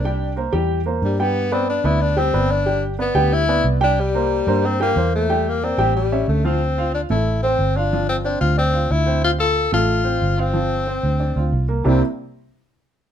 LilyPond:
<<
  \new Staff \with { instrumentName = "Grand piano" } { \time 4/4 \key c \mixolydian \tempo 4 = 183 <g g' g''>4 <bes bes' c''>8 <g g' g''>4 <bes bes' c''>4 <g g' g''>8~ | <g g' g''>8 <b b' d''>4 <b b' d''>4 <g g' g''>8 <b b' d''>4 | <g g' g''>4 <b b' d''>8 <g g' g''>4 <b b' d''>4 <g g' g''>8~ | <g g' g''>8 <bes bes' c''>4 <bes bes' c''>4 <g g' g''>8 <bes bes' c''>4 |
<g g' g''>4 <bes bes' d''>8 <g g' g''>4 <cis' cis'' e''>4 <f f' f''>8 | r8 <f' f''>4 <a a'>4 <c' c''>4 <f' f''>8 | <f f'>4 <c' c''>4 <d' d''>8 <f' f''>4 <c' c''>8~ | <c' c''>8 <f' f''>4 <a a'>4 <c' c''>4 <f' f''>8 |
<f f'>4 <c' c''>4 <d' d''>8 <f' f''>4 <bes bes'>8 | <c g bes c' d' e'>8 r2. r8 | }
  \new Staff \with { instrumentName = "Tenor saxophone" } { \time 4/4 \key c \mixolydian d'4. r4. g8 b8~ | b8 c'8 d'8 e'8 d'8 c'4 d'8~ | d'8 r8 b4 e'4 r8 d'8 | g2 c'8 bes4 a8~ |
a8 bes8 c'4 g4 a8 c'8~ | c'4 d'8 e'4 c'4 d'8~ | d'8 c'8 d'8 f'8 c'4 e'4 | f'8 a'4 f'2 c'8~ |
c'2.~ c'8 r8 | c'8 r2. r8 | }
  \new Staff \with { instrumentName = "Fingered electric bass" } { \clef bass \time 4/4 \key c \mixolydian c,4. e,4. g,4~ | g,4. d,4. g,,4~ | g,,4. d,4. c,4~ | c,4. g,4. e,4~ |
e,4. a,,4. d,4~ | d,4. a,,4. g,,4~ | g,,4. d,4. d,4~ | d,4. a,,4. g,,4~ |
g,,4. d,4 d,8 c,4 | c,8 r2. r8 | }
>>